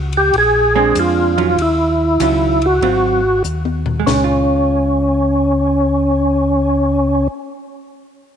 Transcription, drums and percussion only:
0.13 ride soft
0.33 kick soft
0.33 ride medium
0.95 kick soft
0.95 hi-hat pedal medium
0.95 ride medium
1.38 ride soft
1.58 kick soft
1.58 ride medium
2.20 kick soft
2.20 hi-hat pedal medium
2.20 ride medium
2.62 ride soft
2.82 kick soft
2.82 ride medium
3.44 hi-hat pedal medium
3.65 high tom soft
3.86 floor tom medium
4.07 snare medium
4.07 floor tom medium
4.07 splash medium

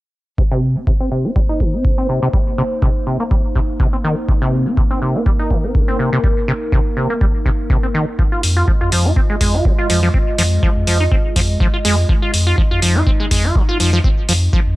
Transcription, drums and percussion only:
0.38 kick loud
0.87 kick loud
1.36 kick loud
1.60 kick medium
1.85 kick loud
2.33 kick loud
2.82 kick loud
3.31 kick loud
3.55 kick medium
3.80 kick loud
4.29 kick loud
4.77 kick loud
5.26 kick loud
5.51 kick medium
5.75 kick loud
6.24 kick loud
6.73 kick loud
7.21 kick loud
7.46 kick medium
7.70 kick loud
8.19 kick loud
8.43 open hi-hat loud
8.68 kick loud
8.92 open hi-hat medium
9.16 kick loud
9.41 kick medium
9.41 open hi-hat medium
9.65 kick loud
9.90 open hi-hat medium
10.14 kick loud
10.38 open hi-hat medium
10.63 kick loud
10.87 open hi-hat medium
11.12 kick loud
11.36 kick medium
11.36 open hi-hat medium
11.60 kick loud
11.85 open hi-hat medium
12.09 kick loud
12.34 open hi-hat medium
12.58 kick loud
12.82 open hi-hat medium
13.07 kick loud
13.31 kick medium
13.31 open hi-hat medium
13.55 kick loud
13.80 open hi-hat medium
14.04 kick loud
14.29 open hi-hat loud
14.53 kick loud

